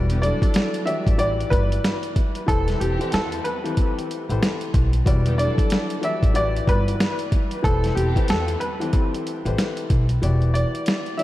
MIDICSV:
0, 0, Header, 1, 6, 480
1, 0, Start_track
1, 0, Key_signature, 1, "minor"
1, 0, Tempo, 645161
1, 1846, Time_signature, 4, 2, 24, 8
1, 8358, End_track
2, 0, Start_track
2, 0, Title_t, "Upright piano"
2, 0, Program_c, 0, 0
2, 162, Note_on_c, 0, 74, 88
2, 615, Note_off_c, 0, 74, 0
2, 636, Note_on_c, 0, 76, 83
2, 856, Note_off_c, 0, 76, 0
2, 881, Note_on_c, 0, 74, 84
2, 1099, Note_off_c, 0, 74, 0
2, 1118, Note_on_c, 0, 71, 87
2, 1485, Note_off_c, 0, 71, 0
2, 1845, Note_on_c, 0, 69, 109
2, 2061, Note_off_c, 0, 69, 0
2, 2085, Note_on_c, 0, 67, 89
2, 2301, Note_off_c, 0, 67, 0
2, 2333, Note_on_c, 0, 69, 87
2, 2546, Note_off_c, 0, 69, 0
2, 2562, Note_on_c, 0, 71, 78
2, 2927, Note_off_c, 0, 71, 0
2, 4003, Note_on_c, 0, 74, 86
2, 4455, Note_off_c, 0, 74, 0
2, 4495, Note_on_c, 0, 76, 83
2, 4707, Note_off_c, 0, 76, 0
2, 4730, Note_on_c, 0, 74, 88
2, 4944, Note_off_c, 0, 74, 0
2, 4976, Note_on_c, 0, 71, 87
2, 5334, Note_off_c, 0, 71, 0
2, 5685, Note_on_c, 0, 69, 106
2, 5901, Note_off_c, 0, 69, 0
2, 5916, Note_on_c, 0, 67, 84
2, 6136, Note_off_c, 0, 67, 0
2, 6173, Note_on_c, 0, 69, 93
2, 6386, Note_off_c, 0, 69, 0
2, 6400, Note_on_c, 0, 71, 75
2, 6766, Note_off_c, 0, 71, 0
2, 7840, Note_on_c, 0, 74, 87
2, 8294, Note_off_c, 0, 74, 0
2, 8314, Note_on_c, 0, 76, 78
2, 8358, Note_off_c, 0, 76, 0
2, 8358, End_track
3, 0, Start_track
3, 0, Title_t, "Grand piano"
3, 0, Program_c, 1, 0
3, 0, Note_on_c, 1, 52, 97
3, 0, Note_on_c, 1, 55, 99
3, 0, Note_on_c, 1, 64, 90
3, 0, Note_on_c, 1, 66, 90
3, 0, Note_on_c, 1, 74, 108
3, 598, Note_off_c, 1, 52, 0
3, 599, Note_off_c, 1, 64, 0
3, 601, Note_off_c, 1, 66, 0
3, 602, Note_off_c, 1, 55, 0
3, 604, Note_off_c, 1, 74, 0
3, 634, Note_on_c, 1, 52, 85
3, 637, Note_on_c, 1, 64, 74
3, 641, Note_on_c, 1, 66, 82
3, 644, Note_on_c, 1, 67, 83
3, 647, Note_on_c, 1, 74, 98
3, 865, Note_off_c, 1, 52, 0
3, 867, Note_off_c, 1, 64, 0
3, 868, Note_off_c, 1, 66, 0
3, 870, Note_off_c, 1, 67, 0
3, 871, Note_off_c, 1, 74, 0
3, 876, Note_on_c, 1, 52, 98
3, 879, Note_on_c, 1, 64, 84
3, 882, Note_on_c, 1, 66, 84
3, 886, Note_on_c, 1, 67, 89
3, 889, Note_on_c, 1, 74, 111
3, 1781, Note_off_c, 1, 52, 0
3, 1782, Note_off_c, 1, 64, 0
3, 1784, Note_off_c, 1, 66, 0
3, 1786, Note_off_c, 1, 67, 0
3, 1787, Note_off_c, 1, 74, 0
3, 1834, Note_on_c, 1, 52, 99
3, 1836, Note_on_c, 1, 64, 92
3, 1838, Note_on_c, 1, 67, 81
3, 1841, Note_on_c, 1, 69, 91
3, 1843, Note_on_c, 1, 71, 81
3, 1846, Note_on_c, 1, 72, 106
3, 2191, Note_off_c, 1, 52, 0
3, 2192, Note_off_c, 1, 64, 0
3, 2193, Note_off_c, 1, 67, 0
3, 2194, Note_off_c, 1, 69, 0
3, 2195, Note_off_c, 1, 71, 0
3, 2197, Note_off_c, 1, 72, 0
3, 2226, Note_on_c, 1, 52, 91
3, 2229, Note_on_c, 1, 64, 86
3, 2231, Note_on_c, 1, 67, 80
3, 2233, Note_on_c, 1, 69, 89
3, 2236, Note_on_c, 1, 71, 89
3, 2238, Note_on_c, 1, 72, 94
3, 2540, Note_off_c, 1, 52, 0
3, 2542, Note_off_c, 1, 64, 0
3, 2543, Note_off_c, 1, 67, 0
3, 2544, Note_off_c, 1, 69, 0
3, 2545, Note_off_c, 1, 71, 0
3, 2546, Note_off_c, 1, 72, 0
3, 2708, Note_on_c, 1, 52, 90
3, 2711, Note_on_c, 1, 64, 84
3, 2713, Note_on_c, 1, 67, 88
3, 2716, Note_on_c, 1, 69, 77
3, 2718, Note_on_c, 1, 71, 81
3, 2720, Note_on_c, 1, 60, 103
3, 3143, Note_off_c, 1, 52, 0
3, 3144, Note_off_c, 1, 64, 0
3, 3146, Note_off_c, 1, 67, 0
3, 3147, Note_off_c, 1, 69, 0
3, 3148, Note_off_c, 1, 71, 0
3, 3149, Note_off_c, 1, 60, 0
3, 3193, Note_on_c, 1, 52, 85
3, 3195, Note_on_c, 1, 64, 83
3, 3198, Note_on_c, 1, 67, 86
3, 3201, Note_on_c, 1, 69, 81
3, 3203, Note_on_c, 1, 71, 85
3, 3206, Note_on_c, 1, 72, 102
3, 3626, Note_off_c, 1, 52, 0
3, 3627, Note_off_c, 1, 64, 0
3, 3628, Note_off_c, 1, 67, 0
3, 3630, Note_off_c, 1, 69, 0
3, 3631, Note_off_c, 1, 71, 0
3, 3632, Note_off_c, 1, 72, 0
3, 3761, Note_on_c, 1, 52, 97
3, 3764, Note_on_c, 1, 64, 92
3, 3766, Note_on_c, 1, 66, 92
3, 3770, Note_on_c, 1, 55, 95
3, 3773, Note_on_c, 1, 74, 109
3, 4438, Note_off_c, 1, 52, 0
3, 4440, Note_off_c, 1, 64, 0
3, 4441, Note_off_c, 1, 66, 0
3, 4443, Note_off_c, 1, 55, 0
3, 4444, Note_off_c, 1, 74, 0
3, 4474, Note_on_c, 1, 52, 91
3, 4477, Note_on_c, 1, 64, 76
3, 4480, Note_on_c, 1, 66, 83
3, 4483, Note_on_c, 1, 67, 84
3, 4486, Note_on_c, 1, 74, 99
3, 4705, Note_off_c, 1, 52, 0
3, 4706, Note_off_c, 1, 64, 0
3, 4708, Note_off_c, 1, 66, 0
3, 4709, Note_off_c, 1, 67, 0
3, 4711, Note_off_c, 1, 74, 0
3, 4716, Note_on_c, 1, 52, 101
3, 4719, Note_on_c, 1, 64, 84
3, 4721, Note_on_c, 1, 66, 88
3, 4724, Note_on_c, 1, 67, 88
3, 4728, Note_on_c, 1, 74, 109
3, 5621, Note_off_c, 1, 52, 0
3, 5622, Note_off_c, 1, 64, 0
3, 5623, Note_off_c, 1, 66, 0
3, 5625, Note_off_c, 1, 67, 0
3, 5627, Note_off_c, 1, 74, 0
3, 5672, Note_on_c, 1, 52, 98
3, 5675, Note_on_c, 1, 64, 86
3, 5677, Note_on_c, 1, 67, 82
3, 5680, Note_on_c, 1, 69, 91
3, 5682, Note_on_c, 1, 71, 85
3, 5685, Note_on_c, 1, 72, 105
3, 6030, Note_off_c, 1, 52, 0
3, 6032, Note_off_c, 1, 64, 0
3, 6033, Note_off_c, 1, 67, 0
3, 6034, Note_off_c, 1, 69, 0
3, 6035, Note_off_c, 1, 71, 0
3, 6036, Note_off_c, 1, 72, 0
3, 6064, Note_on_c, 1, 52, 93
3, 6067, Note_on_c, 1, 64, 86
3, 6069, Note_on_c, 1, 67, 83
3, 6071, Note_on_c, 1, 69, 91
3, 6074, Note_on_c, 1, 71, 87
3, 6076, Note_on_c, 1, 72, 93
3, 6379, Note_off_c, 1, 52, 0
3, 6380, Note_off_c, 1, 64, 0
3, 6382, Note_off_c, 1, 67, 0
3, 6383, Note_off_c, 1, 69, 0
3, 6384, Note_off_c, 1, 71, 0
3, 6385, Note_off_c, 1, 72, 0
3, 6547, Note_on_c, 1, 52, 93
3, 6549, Note_on_c, 1, 64, 83
3, 6551, Note_on_c, 1, 67, 85
3, 6554, Note_on_c, 1, 69, 76
3, 6557, Note_on_c, 1, 71, 84
3, 6559, Note_on_c, 1, 60, 105
3, 6982, Note_off_c, 1, 52, 0
3, 6984, Note_off_c, 1, 64, 0
3, 6985, Note_off_c, 1, 67, 0
3, 6986, Note_off_c, 1, 69, 0
3, 6987, Note_off_c, 1, 71, 0
3, 6988, Note_off_c, 1, 60, 0
3, 7031, Note_on_c, 1, 52, 88
3, 7034, Note_on_c, 1, 64, 82
3, 7036, Note_on_c, 1, 67, 81
3, 7038, Note_on_c, 1, 69, 79
3, 7041, Note_on_c, 1, 71, 84
3, 7043, Note_on_c, 1, 72, 103
3, 7465, Note_off_c, 1, 52, 0
3, 7466, Note_off_c, 1, 64, 0
3, 7467, Note_off_c, 1, 67, 0
3, 7468, Note_off_c, 1, 69, 0
3, 7469, Note_off_c, 1, 71, 0
3, 7471, Note_off_c, 1, 72, 0
3, 7600, Note_on_c, 1, 52, 93
3, 7603, Note_on_c, 1, 64, 89
3, 7607, Note_on_c, 1, 66, 91
3, 7609, Note_on_c, 1, 67, 89
3, 7612, Note_on_c, 1, 74, 103
3, 8278, Note_off_c, 1, 52, 0
3, 8279, Note_off_c, 1, 64, 0
3, 8281, Note_off_c, 1, 66, 0
3, 8283, Note_off_c, 1, 67, 0
3, 8284, Note_off_c, 1, 74, 0
3, 8314, Note_on_c, 1, 52, 83
3, 8318, Note_on_c, 1, 64, 71
3, 8321, Note_on_c, 1, 66, 80
3, 8323, Note_on_c, 1, 67, 81
3, 8326, Note_on_c, 1, 74, 94
3, 8358, Note_off_c, 1, 52, 0
3, 8358, Note_off_c, 1, 64, 0
3, 8358, Note_off_c, 1, 66, 0
3, 8358, Note_off_c, 1, 67, 0
3, 8358, Note_off_c, 1, 74, 0
3, 8358, End_track
4, 0, Start_track
4, 0, Title_t, "String section"
4, 0, Program_c, 2, 48
4, 70, Note_on_c, 2, 50, 88
4, 70, Note_on_c, 2, 59, 87
4, 70, Note_on_c, 2, 67, 83
4, 146, Note_off_c, 2, 50, 0
4, 146, Note_off_c, 2, 59, 0
4, 146, Note_off_c, 2, 67, 0
4, 157, Note_on_c, 2, 54, 83
4, 157, Note_on_c, 2, 62, 87
4, 157, Note_on_c, 2, 69, 99
4, 612, Note_off_c, 2, 54, 0
4, 612, Note_off_c, 2, 62, 0
4, 612, Note_off_c, 2, 69, 0
4, 1991, Note_on_c, 2, 55, 72
4, 1991, Note_on_c, 2, 64, 69
4, 1991, Note_on_c, 2, 71, 83
4, 2066, Note_off_c, 2, 55, 0
4, 2066, Note_off_c, 2, 64, 0
4, 2066, Note_off_c, 2, 71, 0
4, 2086, Note_on_c, 2, 52, 88
4, 2086, Note_on_c, 2, 60, 88
4, 2086, Note_on_c, 2, 67, 105
4, 2537, Note_off_c, 2, 52, 0
4, 2537, Note_off_c, 2, 60, 0
4, 2537, Note_off_c, 2, 67, 0
4, 3909, Note_on_c, 2, 50, 79
4, 3909, Note_on_c, 2, 59, 85
4, 3909, Note_on_c, 2, 67, 86
4, 3985, Note_off_c, 2, 50, 0
4, 3985, Note_off_c, 2, 59, 0
4, 3985, Note_off_c, 2, 67, 0
4, 4007, Note_on_c, 2, 54, 88
4, 4007, Note_on_c, 2, 62, 80
4, 4008, Note_on_c, 2, 69, 109
4, 4458, Note_off_c, 2, 54, 0
4, 4458, Note_off_c, 2, 62, 0
4, 4458, Note_off_c, 2, 69, 0
4, 5829, Note_on_c, 2, 55, 76
4, 5830, Note_on_c, 2, 64, 81
4, 5830, Note_on_c, 2, 71, 79
4, 5905, Note_off_c, 2, 55, 0
4, 5906, Note_off_c, 2, 64, 0
4, 5906, Note_off_c, 2, 71, 0
4, 5924, Note_on_c, 2, 67, 106
4, 5925, Note_on_c, 2, 52, 94
4, 5925, Note_on_c, 2, 60, 85
4, 6376, Note_off_c, 2, 52, 0
4, 6376, Note_off_c, 2, 60, 0
4, 6376, Note_off_c, 2, 67, 0
4, 8358, End_track
5, 0, Start_track
5, 0, Title_t, "Upright bass"
5, 0, Program_c, 3, 32
5, 0, Note_on_c, 3, 28, 107
5, 226, Note_off_c, 3, 28, 0
5, 793, Note_on_c, 3, 33, 93
5, 1052, Note_off_c, 3, 33, 0
5, 1127, Note_on_c, 3, 31, 100
5, 1313, Note_off_c, 3, 31, 0
5, 1846, Note_on_c, 3, 28, 98
5, 2032, Note_off_c, 3, 28, 0
5, 2087, Note_on_c, 3, 28, 94
5, 2200, Note_off_c, 3, 28, 0
5, 2327, Note_on_c, 3, 40, 93
5, 2513, Note_off_c, 3, 40, 0
5, 3194, Note_on_c, 3, 33, 100
5, 3266, Note_off_c, 3, 33, 0
5, 3528, Note_on_c, 3, 35, 98
5, 3713, Note_off_c, 3, 35, 0
5, 3766, Note_on_c, 3, 28, 108
5, 4066, Note_off_c, 3, 28, 0
5, 4633, Note_on_c, 3, 33, 96
5, 4892, Note_off_c, 3, 33, 0
5, 4967, Note_on_c, 3, 31, 97
5, 5153, Note_off_c, 3, 31, 0
5, 5686, Note_on_c, 3, 28, 100
5, 5872, Note_off_c, 3, 28, 0
5, 5926, Note_on_c, 3, 28, 96
5, 6039, Note_off_c, 3, 28, 0
5, 6167, Note_on_c, 3, 40, 93
5, 6353, Note_off_c, 3, 40, 0
5, 7032, Note_on_c, 3, 33, 97
5, 7105, Note_off_c, 3, 33, 0
5, 7366, Note_on_c, 3, 35, 95
5, 7552, Note_off_c, 3, 35, 0
5, 7606, Note_on_c, 3, 28, 104
5, 7906, Note_off_c, 3, 28, 0
5, 8358, End_track
6, 0, Start_track
6, 0, Title_t, "Drums"
6, 72, Note_on_c, 9, 42, 65
6, 147, Note_off_c, 9, 42, 0
6, 173, Note_on_c, 9, 42, 83
6, 247, Note_off_c, 9, 42, 0
6, 312, Note_on_c, 9, 36, 94
6, 318, Note_on_c, 9, 42, 62
6, 386, Note_off_c, 9, 36, 0
6, 393, Note_off_c, 9, 42, 0
6, 401, Note_on_c, 9, 42, 93
6, 416, Note_on_c, 9, 38, 118
6, 476, Note_off_c, 9, 42, 0
6, 491, Note_off_c, 9, 38, 0
6, 551, Note_on_c, 9, 42, 67
6, 626, Note_off_c, 9, 42, 0
6, 647, Note_on_c, 9, 42, 78
6, 721, Note_off_c, 9, 42, 0
6, 793, Note_on_c, 9, 36, 100
6, 799, Note_on_c, 9, 42, 53
6, 867, Note_off_c, 9, 36, 0
6, 873, Note_off_c, 9, 42, 0
6, 885, Note_on_c, 9, 42, 84
6, 959, Note_off_c, 9, 42, 0
6, 1045, Note_on_c, 9, 42, 56
6, 1120, Note_off_c, 9, 42, 0
6, 1126, Note_on_c, 9, 36, 96
6, 1136, Note_on_c, 9, 42, 76
6, 1201, Note_off_c, 9, 36, 0
6, 1211, Note_off_c, 9, 42, 0
6, 1280, Note_on_c, 9, 42, 59
6, 1355, Note_off_c, 9, 42, 0
6, 1372, Note_on_c, 9, 38, 124
6, 1375, Note_on_c, 9, 42, 88
6, 1447, Note_off_c, 9, 38, 0
6, 1449, Note_off_c, 9, 42, 0
6, 1510, Note_on_c, 9, 42, 57
6, 1584, Note_off_c, 9, 42, 0
6, 1607, Note_on_c, 9, 36, 86
6, 1607, Note_on_c, 9, 42, 71
6, 1681, Note_off_c, 9, 36, 0
6, 1682, Note_off_c, 9, 42, 0
6, 1749, Note_on_c, 9, 42, 54
6, 1823, Note_off_c, 9, 42, 0
6, 1845, Note_on_c, 9, 36, 120
6, 1853, Note_on_c, 9, 42, 94
6, 1920, Note_off_c, 9, 36, 0
6, 1927, Note_off_c, 9, 42, 0
6, 1992, Note_on_c, 9, 42, 62
6, 2007, Note_on_c, 9, 38, 34
6, 2067, Note_off_c, 9, 42, 0
6, 2081, Note_off_c, 9, 38, 0
6, 2093, Note_on_c, 9, 42, 86
6, 2167, Note_off_c, 9, 42, 0
6, 2239, Note_on_c, 9, 42, 64
6, 2313, Note_off_c, 9, 42, 0
6, 2322, Note_on_c, 9, 42, 93
6, 2336, Note_on_c, 9, 38, 117
6, 2396, Note_off_c, 9, 42, 0
6, 2411, Note_off_c, 9, 38, 0
6, 2471, Note_on_c, 9, 42, 64
6, 2546, Note_off_c, 9, 42, 0
6, 2567, Note_on_c, 9, 42, 78
6, 2641, Note_off_c, 9, 42, 0
6, 2720, Note_on_c, 9, 42, 57
6, 2794, Note_off_c, 9, 42, 0
6, 2805, Note_on_c, 9, 42, 83
6, 2807, Note_on_c, 9, 36, 96
6, 2880, Note_off_c, 9, 42, 0
6, 2882, Note_off_c, 9, 36, 0
6, 2965, Note_on_c, 9, 42, 57
6, 3040, Note_off_c, 9, 42, 0
6, 3057, Note_on_c, 9, 42, 74
6, 3131, Note_off_c, 9, 42, 0
6, 3201, Note_on_c, 9, 42, 59
6, 3275, Note_off_c, 9, 42, 0
6, 3293, Note_on_c, 9, 38, 121
6, 3295, Note_on_c, 9, 42, 93
6, 3367, Note_off_c, 9, 38, 0
6, 3370, Note_off_c, 9, 42, 0
6, 3430, Note_on_c, 9, 42, 55
6, 3504, Note_off_c, 9, 42, 0
6, 3527, Note_on_c, 9, 36, 87
6, 3527, Note_on_c, 9, 42, 74
6, 3601, Note_off_c, 9, 36, 0
6, 3602, Note_off_c, 9, 42, 0
6, 3669, Note_on_c, 9, 42, 54
6, 3744, Note_off_c, 9, 42, 0
6, 3765, Note_on_c, 9, 36, 118
6, 3773, Note_on_c, 9, 42, 95
6, 3840, Note_off_c, 9, 36, 0
6, 3847, Note_off_c, 9, 42, 0
6, 3912, Note_on_c, 9, 42, 64
6, 3986, Note_off_c, 9, 42, 0
6, 4013, Note_on_c, 9, 42, 84
6, 4087, Note_off_c, 9, 42, 0
6, 4152, Note_on_c, 9, 36, 94
6, 4158, Note_on_c, 9, 42, 63
6, 4226, Note_off_c, 9, 36, 0
6, 4233, Note_off_c, 9, 42, 0
6, 4242, Note_on_c, 9, 42, 97
6, 4256, Note_on_c, 9, 38, 118
6, 4316, Note_off_c, 9, 42, 0
6, 4331, Note_off_c, 9, 38, 0
6, 4391, Note_on_c, 9, 42, 67
6, 4465, Note_off_c, 9, 42, 0
6, 4486, Note_on_c, 9, 42, 79
6, 4560, Note_off_c, 9, 42, 0
6, 4632, Note_on_c, 9, 36, 98
6, 4638, Note_on_c, 9, 42, 55
6, 4707, Note_off_c, 9, 36, 0
6, 4713, Note_off_c, 9, 42, 0
6, 4724, Note_on_c, 9, 42, 81
6, 4799, Note_off_c, 9, 42, 0
6, 4884, Note_on_c, 9, 42, 56
6, 4959, Note_off_c, 9, 42, 0
6, 4966, Note_on_c, 9, 36, 95
6, 4976, Note_on_c, 9, 42, 73
6, 5041, Note_off_c, 9, 36, 0
6, 5050, Note_off_c, 9, 42, 0
6, 5119, Note_on_c, 9, 42, 60
6, 5194, Note_off_c, 9, 42, 0
6, 5211, Note_on_c, 9, 38, 125
6, 5214, Note_on_c, 9, 42, 90
6, 5286, Note_off_c, 9, 38, 0
6, 5288, Note_off_c, 9, 42, 0
6, 5349, Note_on_c, 9, 42, 57
6, 5423, Note_off_c, 9, 42, 0
6, 5446, Note_on_c, 9, 36, 89
6, 5446, Note_on_c, 9, 42, 74
6, 5521, Note_off_c, 9, 36, 0
6, 5521, Note_off_c, 9, 42, 0
6, 5589, Note_on_c, 9, 42, 55
6, 5663, Note_off_c, 9, 42, 0
6, 5685, Note_on_c, 9, 36, 123
6, 5692, Note_on_c, 9, 42, 95
6, 5759, Note_off_c, 9, 36, 0
6, 5767, Note_off_c, 9, 42, 0
6, 5832, Note_on_c, 9, 42, 65
6, 5846, Note_on_c, 9, 38, 35
6, 5906, Note_off_c, 9, 42, 0
6, 5921, Note_off_c, 9, 38, 0
6, 5933, Note_on_c, 9, 42, 86
6, 6007, Note_off_c, 9, 42, 0
6, 6071, Note_on_c, 9, 36, 95
6, 6077, Note_on_c, 9, 42, 61
6, 6146, Note_off_c, 9, 36, 0
6, 6152, Note_off_c, 9, 42, 0
6, 6161, Note_on_c, 9, 42, 93
6, 6176, Note_on_c, 9, 38, 117
6, 6235, Note_off_c, 9, 42, 0
6, 6250, Note_off_c, 9, 38, 0
6, 6311, Note_on_c, 9, 42, 65
6, 6385, Note_off_c, 9, 42, 0
6, 6405, Note_on_c, 9, 42, 78
6, 6480, Note_off_c, 9, 42, 0
6, 6558, Note_on_c, 9, 42, 56
6, 6632, Note_off_c, 9, 42, 0
6, 6643, Note_on_c, 9, 42, 83
6, 6646, Note_on_c, 9, 36, 99
6, 6718, Note_off_c, 9, 42, 0
6, 6720, Note_off_c, 9, 36, 0
6, 6804, Note_on_c, 9, 42, 55
6, 6878, Note_off_c, 9, 42, 0
6, 6895, Note_on_c, 9, 42, 76
6, 6969, Note_off_c, 9, 42, 0
6, 7039, Note_on_c, 9, 42, 57
6, 7113, Note_off_c, 9, 42, 0
6, 7130, Note_on_c, 9, 38, 121
6, 7133, Note_on_c, 9, 42, 92
6, 7205, Note_off_c, 9, 38, 0
6, 7208, Note_off_c, 9, 42, 0
6, 7268, Note_on_c, 9, 42, 56
6, 7342, Note_off_c, 9, 42, 0
6, 7366, Note_on_c, 9, 36, 90
6, 7366, Note_on_c, 9, 42, 71
6, 7440, Note_off_c, 9, 36, 0
6, 7440, Note_off_c, 9, 42, 0
6, 7507, Note_on_c, 9, 42, 53
6, 7582, Note_off_c, 9, 42, 0
6, 7611, Note_on_c, 9, 42, 89
6, 7685, Note_off_c, 9, 42, 0
6, 7750, Note_on_c, 9, 42, 36
6, 7825, Note_off_c, 9, 42, 0
6, 7851, Note_on_c, 9, 42, 77
6, 7926, Note_off_c, 9, 42, 0
6, 7997, Note_on_c, 9, 42, 59
6, 8071, Note_off_c, 9, 42, 0
6, 8080, Note_on_c, 9, 42, 90
6, 8095, Note_on_c, 9, 38, 110
6, 8155, Note_off_c, 9, 42, 0
6, 8169, Note_off_c, 9, 38, 0
6, 8230, Note_on_c, 9, 42, 35
6, 8305, Note_off_c, 9, 42, 0
6, 8326, Note_on_c, 9, 42, 75
6, 8358, Note_off_c, 9, 42, 0
6, 8358, End_track
0, 0, End_of_file